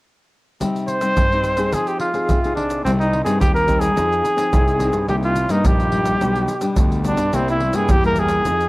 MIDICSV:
0, 0, Header, 1, 6, 480
1, 0, Start_track
1, 0, Key_signature, -3, "minor"
1, 0, Tempo, 560748
1, 519, Time_signature, 4, 2, 24, 8
1, 7436, End_track
2, 0, Start_track
2, 0, Title_t, "Trumpet"
2, 0, Program_c, 0, 56
2, 749, Note_on_c, 0, 72, 93
2, 1484, Note_on_c, 0, 68, 77
2, 1497, Note_off_c, 0, 72, 0
2, 1608, Note_on_c, 0, 67, 72
2, 1621, Note_off_c, 0, 68, 0
2, 1709, Note_off_c, 0, 67, 0
2, 1714, Note_on_c, 0, 65, 71
2, 2164, Note_off_c, 0, 65, 0
2, 2184, Note_on_c, 0, 62, 69
2, 2416, Note_off_c, 0, 62, 0
2, 2434, Note_on_c, 0, 60, 75
2, 2490, Note_off_c, 0, 60, 0
2, 2563, Note_on_c, 0, 63, 76
2, 2769, Note_off_c, 0, 63, 0
2, 2774, Note_on_c, 0, 68, 78
2, 2898, Note_off_c, 0, 68, 0
2, 2911, Note_on_c, 0, 67, 87
2, 3028, Note_off_c, 0, 67, 0
2, 3034, Note_on_c, 0, 70, 91
2, 3249, Note_on_c, 0, 68, 91
2, 3262, Note_off_c, 0, 70, 0
2, 4345, Note_off_c, 0, 68, 0
2, 4359, Note_on_c, 0, 67, 85
2, 4413, Note_off_c, 0, 67, 0
2, 4490, Note_on_c, 0, 65, 74
2, 4716, Note_on_c, 0, 63, 74
2, 4728, Note_off_c, 0, 65, 0
2, 4849, Note_on_c, 0, 67, 80
2, 4862, Note_off_c, 0, 63, 0
2, 5812, Note_off_c, 0, 67, 0
2, 6052, Note_on_c, 0, 62, 80
2, 6290, Note_on_c, 0, 60, 85
2, 6303, Note_off_c, 0, 62, 0
2, 6404, Note_off_c, 0, 60, 0
2, 6419, Note_on_c, 0, 64, 80
2, 6638, Note_on_c, 0, 68, 81
2, 6651, Note_off_c, 0, 64, 0
2, 6774, Note_on_c, 0, 67, 87
2, 6787, Note_off_c, 0, 68, 0
2, 6885, Note_off_c, 0, 67, 0
2, 6899, Note_on_c, 0, 70, 94
2, 7013, Note_on_c, 0, 68, 86
2, 7026, Note_off_c, 0, 70, 0
2, 7436, Note_off_c, 0, 68, 0
2, 7436, End_track
3, 0, Start_track
3, 0, Title_t, "Nylon-string guitar"
3, 0, Program_c, 1, 24
3, 516, Note_on_c, 1, 48, 58
3, 520, Note_on_c, 1, 55, 50
3, 521, Note_on_c, 1, 60, 45
3, 526, Note_on_c, 1, 63, 54
3, 841, Note_off_c, 1, 55, 0
3, 842, Note_off_c, 1, 60, 0
3, 845, Note_off_c, 1, 63, 0
3, 869, Note_on_c, 1, 55, 52
3, 872, Note_on_c, 1, 60, 51
3, 874, Note_on_c, 1, 63, 56
3, 975, Note_off_c, 1, 48, 0
3, 1003, Note_on_c, 1, 43, 56
3, 1076, Note_off_c, 1, 55, 0
3, 1077, Note_off_c, 1, 60, 0
3, 1079, Note_off_c, 1, 63, 0
3, 1132, Note_on_c, 1, 55, 52
3, 1135, Note_on_c, 1, 60, 54
3, 1138, Note_on_c, 1, 63, 57
3, 1328, Note_off_c, 1, 55, 0
3, 1329, Note_off_c, 1, 60, 0
3, 1330, Note_off_c, 1, 63, 0
3, 1346, Note_on_c, 1, 60, 53
3, 1350, Note_on_c, 1, 63, 55
3, 1356, Note_on_c, 1, 68, 58
3, 1458, Note_off_c, 1, 43, 0
3, 1487, Note_on_c, 1, 53, 61
3, 1795, Note_off_c, 1, 60, 0
3, 1797, Note_off_c, 1, 63, 0
3, 1801, Note_off_c, 1, 68, 0
3, 1825, Note_on_c, 1, 60, 48
3, 1831, Note_on_c, 1, 63, 51
3, 1838, Note_on_c, 1, 68, 59
3, 1940, Note_off_c, 1, 53, 0
3, 1959, Note_on_c, 1, 48, 57
3, 2035, Note_off_c, 1, 60, 0
3, 2038, Note_off_c, 1, 63, 0
3, 2040, Note_off_c, 1, 68, 0
3, 2091, Note_on_c, 1, 60, 47
3, 2098, Note_on_c, 1, 63, 45
3, 2098, Note_on_c, 1, 68, 57
3, 2409, Note_off_c, 1, 60, 0
3, 2410, Note_off_c, 1, 63, 0
3, 2412, Note_off_c, 1, 68, 0
3, 2416, Note_off_c, 1, 48, 0
3, 2446, Note_on_c, 1, 48, 51
3, 2449, Note_on_c, 1, 55, 59
3, 2450, Note_on_c, 1, 60, 55
3, 2450, Note_on_c, 1, 63, 55
3, 2670, Note_off_c, 1, 55, 0
3, 2670, Note_off_c, 1, 60, 0
3, 2671, Note_off_c, 1, 63, 0
3, 2784, Note_on_c, 1, 55, 61
3, 2787, Note_on_c, 1, 60, 62
3, 2793, Note_on_c, 1, 63, 66
3, 2900, Note_off_c, 1, 48, 0
3, 2912, Note_on_c, 1, 43, 49
3, 3115, Note_off_c, 1, 55, 0
3, 3115, Note_off_c, 1, 60, 0
3, 3117, Note_off_c, 1, 63, 0
3, 3146, Note_on_c, 1, 55, 54
3, 3151, Note_on_c, 1, 60, 54
3, 3155, Note_on_c, 1, 63, 50
3, 3295, Note_off_c, 1, 55, 0
3, 3296, Note_off_c, 1, 60, 0
3, 3300, Note_off_c, 1, 63, 0
3, 3373, Note_off_c, 1, 43, 0
3, 3389, Note_on_c, 1, 53, 53
3, 3390, Note_on_c, 1, 60, 47
3, 3392, Note_on_c, 1, 63, 53
3, 3394, Note_on_c, 1, 68, 54
3, 3717, Note_off_c, 1, 60, 0
3, 3718, Note_off_c, 1, 63, 0
3, 3719, Note_off_c, 1, 68, 0
3, 3736, Note_on_c, 1, 60, 52
3, 3739, Note_on_c, 1, 63, 54
3, 3747, Note_on_c, 1, 68, 65
3, 3851, Note_off_c, 1, 53, 0
3, 3872, Note_on_c, 1, 48, 51
3, 4070, Note_off_c, 1, 60, 0
3, 4072, Note_off_c, 1, 63, 0
3, 4076, Note_off_c, 1, 68, 0
3, 4102, Note_on_c, 1, 60, 55
3, 4106, Note_on_c, 1, 63, 50
3, 4108, Note_on_c, 1, 68, 56
3, 4313, Note_off_c, 1, 60, 0
3, 4315, Note_off_c, 1, 63, 0
3, 4316, Note_off_c, 1, 68, 0
3, 4332, Note_off_c, 1, 48, 0
3, 4347, Note_on_c, 1, 48, 53
3, 4352, Note_on_c, 1, 55, 52
3, 4356, Note_on_c, 1, 58, 51
3, 4358, Note_on_c, 1, 63, 65
3, 4581, Note_off_c, 1, 55, 0
3, 4581, Note_off_c, 1, 58, 0
3, 4584, Note_off_c, 1, 63, 0
3, 4708, Note_on_c, 1, 55, 54
3, 4714, Note_on_c, 1, 58, 62
3, 4714, Note_on_c, 1, 63, 66
3, 4810, Note_off_c, 1, 48, 0
3, 4837, Note_on_c, 1, 43, 52
3, 5036, Note_off_c, 1, 55, 0
3, 5037, Note_off_c, 1, 58, 0
3, 5038, Note_off_c, 1, 63, 0
3, 5074, Note_on_c, 1, 55, 54
3, 5077, Note_on_c, 1, 58, 51
3, 5079, Note_on_c, 1, 63, 53
3, 5279, Note_off_c, 1, 55, 0
3, 5279, Note_off_c, 1, 58, 0
3, 5281, Note_off_c, 1, 63, 0
3, 5294, Note_off_c, 1, 43, 0
3, 5317, Note_on_c, 1, 47, 52
3, 5317, Note_on_c, 1, 55, 51
3, 5323, Note_on_c, 1, 59, 49
3, 5323, Note_on_c, 1, 62, 57
3, 5543, Note_off_c, 1, 55, 0
3, 5545, Note_off_c, 1, 59, 0
3, 5546, Note_off_c, 1, 62, 0
3, 5663, Note_on_c, 1, 55, 63
3, 5668, Note_on_c, 1, 59, 59
3, 5670, Note_on_c, 1, 62, 60
3, 5774, Note_off_c, 1, 47, 0
3, 5800, Note_on_c, 1, 47, 49
3, 5993, Note_off_c, 1, 55, 0
3, 5994, Note_off_c, 1, 59, 0
3, 5996, Note_off_c, 1, 62, 0
3, 6026, Note_on_c, 1, 55, 56
3, 6035, Note_on_c, 1, 59, 54
3, 6036, Note_on_c, 1, 62, 62
3, 6173, Note_off_c, 1, 55, 0
3, 6177, Note_off_c, 1, 62, 0
3, 6178, Note_off_c, 1, 59, 0
3, 6254, Note_off_c, 1, 47, 0
3, 6273, Note_on_c, 1, 48, 53
3, 6278, Note_on_c, 1, 55, 52
3, 6282, Note_on_c, 1, 58, 57
3, 6285, Note_on_c, 1, 64, 58
3, 6501, Note_off_c, 1, 55, 0
3, 6505, Note_off_c, 1, 58, 0
3, 6506, Note_off_c, 1, 64, 0
3, 6620, Note_on_c, 1, 55, 57
3, 6626, Note_on_c, 1, 58, 59
3, 6630, Note_on_c, 1, 64, 62
3, 6731, Note_off_c, 1, 48, 0
3, 6754, Note_on_c, 1, 43, 50
3, 6830, Note_off_c, 1, 55, 0
3, 6833, Note_off_c, 1, 58, 0
3, 6835, Note_off_c, 1, 64, 0
3, 6875, Note_on_c, 1, 55, 57
3, 6878, Note_on_c, 1, 58, 54
3, 6880, Note_on_c, 1, 64, 62
3, 7197, Note_off_c, 1, 55, 0
3, 7198, Note_off_c, 1, 58, 0
3, 7199, Note_off_c, 1, 64, 0
3, 7210, Note_off_c, 1, 43, 0
3, 7230, Note_on_c, 1, 53, 51
3, 7234, Note_on_c, 1, 60, 53
3, 7236, Note_on_c, 1, 63, 52
3, 7237, Note_on_c, 1, 68, 52
3, 7375, Note_off_c, 1, 60, 0
3, 7375, Note_off_c, 1, 63, 0
3, 7377, Note_off_c, 1, 68, 0
3, 7436, Note_off_c, 1, 53, 0
3, 7436, End_track
4, 0, Start_track
4, 0, Title_t, "Fingered electric bass"
4, 0, Program_c, 2, 33
4, 2439, Note_on_c, 2, 36, 79
4, 2746, Note_off_c, 2, 36, 0
4, 2786, Note_on_c, 2, 43, 75
4, 2895, Note_off_c, 2, 43, 0
4, 2922, Note_on_c, 2, 39, 73
4, 3330, Note_off_c, 2, 39, 0
4, 3393, Note_on_c, 2, 41, 80
4, 3601, Note_off_c, 2, 41, 0
4, 3881, Note_on_c, 2, 36, 80
4, 4187, Note_off_c, 2, 36, 0
4, 4222, Note_on_c, 2, 43, 72
4, 4332, Note_off_c, 2, 43, 0
4, 4360, Note_on_c, 2, 36, 84
4, 4666, Note_off_c, 2, 36, 0
4, 4701, Note_on_c, 2, 43, 78
4, 4811, Note_off_c, 2, 43, 0
4, 4835, Note_on_c, 2, 34, 78
4, 5245, Note_off_c, 2, 34, 0
4, 5325, Note_on_c, 2, 35, 79
4, 5526, Note_off_c, 2, 35, 0
4, 5802, Note_on_c, 2, 38, 76
4, 6106, Note_off_c, 2, 38, 0
4, 6146, Note_on_c, 2, 43, 74
4, 6253, Note_off_c, 2, 43, 0
4, 6284, Note_on_c, 2, 36, 82
4, 6587, Note_off_c, 2, 36, 0
4, 6626, Note_on_c, 2, 43, 73
4, 6733, Note_off_c, 2, 43, 0
4, 6761, Note_on_c, 2, 40, 78
4, 7167, Note_off_c, 2, 40, 0
4, 7241, Note_on_c, 2, 41, 88
4, 7436, Note_off_c, 2, 41, 0
4, 7436, End_track
5, 0, Start_track
5, 0, Title_t, "Pandeiro"
5, 521, Note_on_c, 9, 54, 69
5, 606, Note_off_c, 9, 54, 0
5, 649, Note_on_c, 9, 54, 27
5, 735, Note_off_c, 9, 54, 0
5, 752, Note_on_c, 9, 54, 48
5, 838, Note_off_c, 9, 54, 0
5, 867, Note_on_c, 9, 54, 55
5, 952, Note_off_c, 9, 54, 0
5, 999, Note_on_c, 9, 54, 72
5, 1085, Note_off_c, 9, 54, 0
5, 1132, Note_on_c, 9, 54, 30
5, 1218, Note_off_c, 9, 54, 0
5, 1230, Note_on_c, 9, 54, 50
5, 1315, Note_off_c, 9, 54, 0
5, 1343, Note_on_c, 9, 54, 56
5, 1429, Note_off_c, 9, 54, 0
5, 1477, Note_on_c, 9, 54, 66
5, 1562, Note_off_c, 9, 54, 0
5, 1600, Note_on_c, 9, 54, 31
5, 1686, Note_off_c, 9, 54, 0
5, 1708, Note_on_c, 9, 54, 48
5, 1793, Note_off_c, 9, 54, 0
5, 1832, Note_on_c, 9, 54, 55
5, 1918, Note_off_c, 9, 54, 0
5, 1960, Note_on_c, 9, 54, 69
5, 2045, Note_off_c, 9, 54, 0
5, 2090, Note_on_c, 9, 54, 29
5, 2175, Note_off_c, 9, 54, 0
5, 2201, Note_on_c, 9, 54, 53
5, 2286, Note_off_c, 9, 54, 0
5, 2311, Note_on_c, 9, 54, 57
5, 2397, Note_off_c, 9, 54, 0
5, 2451, Note_on_c, 9, 54, 74
5, 2537, Note_off_c, 9, 54, 0
5, 2577, Note_on_c, 9, 54, 31
5, 2662, Note_off_c, 9, 54, 0
5, 2681, Note_on_c, 9, 54, 54
5, 2767, Note_off_c, 9, 54, 0
5, 2791, Note_on_c, 9, 54, 62
5, 2877, Note_off_c, 9, 54, 0
5, 2922, Note_on_c, 9, 54, 76
5, 3007, Note_off_c, 9, 54, 0
5, 3048, Note_on_c, 9, 54, 30
5, 3134, Note_off_c, 9, 54, 0
5, 3150, Note_on_c, 9, 54, 51
5, 3236, Note_off_c, 9, 54, 0
5, 3264, Note_on_c, 9, 54, 55
5, 3350, Note_off_c, 9, 54, 0
5, 3399, Note_on_c, 9, 54, 72
5, 3485, Note_off_c, 9, 54, 0
5, 3530, Note_on_c, 9, 54, 33
5, 3616, Note_off_c, 9, 54, 0
5, 3636, Note_on_c, 9, 54, 48
5, 3722, Note_off_c, 9, 54, 0
5, 3749, Note_on_c, 9, 54, 60
5, 3834, Note_off_c, 9, 54, 0
5, 3877, Note_on_c, 9, 54, 78
5, 3962, Note_off_c, 9, 54, 0
5, 4003, Note_on_c, 9, 54, 30
5, 4088, Note_off_c, 9, 54, 0
5, 4108, Note_on_c, 9, 54, 54
5, 4194, Note_off_c, 9, 54, 0
5, 4221, Note_on_c, 9, 54, 58
5, 4306, Note_off_c, 9, 54, 0
5, 4352, Note_on_c, 9, 54, 76
5, 4438, Note_off_c, 9, 54, 0
5, 4475, Note_on_c, 9, 54, 31
5, 4561, Note_off_c, 9, 54, 0
5, 4585, Note_on_c, 9, 54, 53
5, 4671, Note_off_c, 9, 54, 0
5, 4701, Note_on_c, 9, 54, 56
5, 4787, Note_off_c, 9, 54, 0
5, 4832, Note_on_c, 9, 54, 78
5, 4918, Note_off_c, 9, 54, 0
5, 4963, Note_on_c, 9, 54, 31
5, 5049, Note_off_c, 9, 54, 0
5, 5067, Note_on_c, 9, 54, 51
5, 5152, Note_off_c, 9, 54, 0
5, 5183, Note_on_c, 9, 54, 57
5, 5268, Note_off_c, 9, 54, 0
5, 5318, Note_on_c, 9, 54, 71
5, 5404, Note_off_c, 9, 54, 0
5, 5441, Note_on_c, 9, 54, 32
5, 5527, Note_off_c, 9, 54, 0
5, 5549, Note_on_c, 9, 54, 51
5, 5634, Note_off_c, 9, 54, 0
5, 5660, Note_on_c, 9, 54, 58
5, 5746, Note_off_c, 9, 54, 0
5, 5790, Note_on_c, 9, 54, 75
5, 5875, Note_off_c, 9, 54, 0
5, 5922, Note_on_c, 9, 54, 28
5, 6008, Note_off_c, 9, 54, 0
5, 6031, Note_on_c, 9, 54, 57
5, 6116, Note_off_c, 9, 54, 0
5, 6141, Note_on_c, 9, 54, 58
5, 6227, Note_off_c, 9, 54, 0
5, 6274, Note_on_c, 9, 54, 73
5, 6360, Note_off_c, 9, 54, 0
5, 6404, Note_on_c, 9, 54, 33
5, 6490, Note_off_c, 9, 54, 0
5, 6509, Note_on_c, 9, 54, 55
5, 6595, Note_off_c, 9, 54, 0
5, 6618, Note_on_c, 9, 54, 61
5, 6703, Note_off_c, 9, 54, 0
5, 6750, Note_on_c, 9, 54, 81
5, 6836, Note_off_c, 9, 54, 0
5, 6881, Note_on_c, 9, 54, 29
5, 6967, Note_off_c, 9, 54, 0
5, 6981, Note_on_c, 9, 54, 53
5, 7067, Note_off_c, 9, 54, 0
5, 7091, Note_on_c, 9, 54, 64
5, 7177, Note_off_c, 9, 54, 0
5, 7234, Note_on_c, 9, 54, 68
5, 7319, Note_off_c, 9, 54, 0
5, 7365, Note_on_c, 9, 54, 31
5, 7436, Note_off_c, 9, 54, 0
5, 7436, End_track
6, 0, Start_track
6, 0, Title_t, "Drums"
6, 521, Note_on_c, 9, 82, 66
6, 521, Note_on_c, 9, 87, 47
6, 606, Note_off_c, 9, 82, 0
6, 606, Note_off_c, 9, 87, 0
6, 649, Note_on_c, 9, 82, 28
6, 735, Note_off_c, 9, 82, 0
6, 752, Note_on_c, 9, 82, 54
6, 838, Note_off_c, 9, 82, 0
6, 867, Note_on_c, 9, 82, 66
6, 952, Note_off_c, 9, 82, 0
6, 999, Note_on_c, 9, 82, 67
6, 999, Note_on_c, 9, 87, 92
6, 1085, Note_off_c, 9, 82, 0
6, 1085, Note_off_c, 9, 87, 0
6, 1132, Note_on_c, 9, 82, 28
6, 1218, Note_off_c, 9, 82, 0
6, 1230, Note_on_c, 9, 82, 57
6, 1315, Note_off_c, 9, 82, 0
6, 1343, Note_on_c, 9, 82, 65
6, 1429, Note_off_c, 9, 82, 0
6, 1477, Note_on_c, 9, 82, 70
6, 1477, Note_on_c, 9, 87, 50
6, 1562, Note_off_c, 9, 82, 0
6, 1562, Note_off_c, 9, 87, 0
6, 1600, Note_on_c, 9, 82, 30
6, 1686, Note_off_c, 9, 82, 0
6, 1832, Note_on_c, 9, 82, 68
6, 1918, Note_off_c, 9, 82, 0
6, 1960, Note_on_c, 9, 82, 72
6, 1960, Note_on_c, 9, 87, 85
6, 2045, Note_off_c, 9, 82, 0
6, 2045, Note_off_c, 9, 87, 0
6, 2090, Note_on_c, 9, 82, 27
6, 2175, Note_off_c, 9, 82, 0
6, 2311, Note_on_c, 9, 82, 72
6, 2397, Note_off_c, 9, 82, 0
6, 2451, Note_on_c, 9, 82, 73
6, 2451, Note_on_c, 9, 87, 54
6, 2537, Note_off_c, 9, 82, 0
6, 2537, Note_off_c, 9, 87, 0
6, 2577, Note_on_c, 9, 82, 31
6, 2662, Note_off_c, 9, 82, 0
6, 2791, Note_on_c, 9, 82, 68
6, 2877, Note_off_c, 9, 82, 0
6, 2922, Note_on_c, 9, 82, 75
6, 2922, Note_on_c, 9, 87, 93
6, 3007, Note_off_c, 9, 82, 0
6, 3007, Note_off_c, 9, 87, 0
6, 3048, Note_on_c, 9, 82, 31
6, 3134, Note_off_c, 9, 82, 0
6, 3150, Note_on_c, 9, 82, 60
6, 3150, Note_on_c, 9, 87, 61
6, 3236, Note_off_c, 9, 82, 0
6, 3236, Note_off_c, 9, 87, 0
6, 3264, Note_on_c, 9, 82, 73
6, 3350, Note_off_c, 9, 82, 0
6, 3399, Note_on_c, 9, 82, 74
6, 3399, Note_on_c, 9, 87, 52
6, 3485, Note_off_c, 9, 82, 0
6, 3485, Note_off_c, 9, 87, 0
6, 3530, Note_on_c, 9, 82, 32
6, 3616, Note_off_c, 9, 82, 0
6, 3636, Note_on_c, 9, 82, 60
6, 3722, Note_off_c, 9, 82, 0
6, 3749, Note_on_c, 9, 82, 70
6, 3834, Note_off_c, 9, 82, 0
6, 3877, Note_on_c, 9, 82, 76
6, 3877, Note_on_c, 9, 87, 95
6, 3962, Note_off_c, 9, 82, 0
6, 3962, Note_off_c, 9, 87, 0
6, 4003, Note_on_c, 9, 82, 29
6, 4088, Note_off_c, 9, 82, 0
6, 4108, Note_on_c, 9, 82, 65
6, 4194, Note_off_c, 9, 82, 0
6, 4221, Note_on_c, 9, 82, 73
6, 4306, Note_off_c, 9, 82, 0
6, 4352, Note_on_c, 9, 82, 72
6, 4352, Note_on_c, 9, 87, 55
6, 4438, Note_off_c, 9, 82, 0
6, 4438, Note_off_c, 9, 87, 0
6, 4475, Note_on_c, 9, 82, 31
6, 4561, Note_off_c, 9, 82, 0
6, 4585, Note_on_c, 9, 82, 64
6, 4671, Note_off_c, 9, 82, 0
6, 4701, Note_on_c, 9, 82, 73
6, 4787, Note_off_c, 9, 82, 0
6, 4832, Note_on_c, 9, 82, 80
6, 4832, Note_on_c, 9, 87, 98
6, 4918, Note_off_c, 9, 82, 0
6, 4918, Note_off_c, 9, 87, 0
6, 4963, Note_on_c, 9, 82, 31
6, 5049, Note_off_c, 9, 82, 0
6, 5183, Note_on_c, 9, 82, 72
6, 5268, Note_off_c, 9, 82, 0
6, 5318, Note_on_c, 9, 82, 70
6, 5318, Note_on_c, 9, 87, 52
6, 5404, Note_off_c, 9, 82, 0
6, 5404, Note_off_c, 9, 87, 0
6, 5441, Note_on_c, 9, 82, 34
6, 5527, Note_off_c, 9, 82, 0
6, 5549, Note_on_c, 9, 82, 63
6, 5634, Note_off_c, 9, 82, 0
6, 5660, Note_on_c, 9, 82, 72
6, 5746, Note_off_c, 9, 82, 0
6, 5790, Note_on_c, 9, 82, 77
6, 5790, Note_on_c, 9, 87, 94
6, 5875, Note_off_c, 9, 82, 0
6, 5875, Note_off_c, 9, 87, 0
6, 5922, Note_on_c, 9, 82, 30
6, 6008, Note_off_c, 9, 82, 0
6, 6031, Note_on_c, 9, 82, 65
6, 6116, Note_off_c, 9, 82, 0
6, 6141, Note_on_c, 9, 82, 69
6, 6227, Note_off_c, 9, 82, 0
6, 6274, Note_on_c, 9, 82, 77
6, 6274, Note_on_c, 9, 87, 50
6, 6360, Note_off_c, 9, 82, 0
6, 6360, Note_off_c, 9, 87, 0
6, 6404, Note_on_c, 9, 82, 30
6, 6490, Note_off_c, 9, 82, 0
6, 6618, Note_on_c, 9, 82, 67
6, 6703, Note_off_c, 9, 82, 0
6, 6750, Note_on_c, 9, 82, 80
6, 6750, Note_on_c, 9, 87, 99
6, 6836, Note_off_c, 9, 82, 0
6, 6836, Note_off_c, 9, 87, 0
6, 6881, Note_on_c, 9, 82, 31
6, 6967, Note_off_c, 9, 82, 0
6, 6981, Note_on_c, 9, 82, 63
6, 7067, Note_off_c, 9, 82, 0
6, 7091, Note_on_c, 9, 82, 69
6, 7177, Note_off_c, 9, 82, 0
6, 7234, Note_on_c, 9, 82, 72
6, 7234, Note_on_c, 9, 87, 55
6, 7319, Note_off_c, 9, 82, 0
6, 7319, Note_off_c, 9, 87, 0
6, 7365, Note_on_c, 9, 82, 33
6, 7436, Note_off_c, 9, 82, 0
6, 7436, End_track
0, 0, End_of_file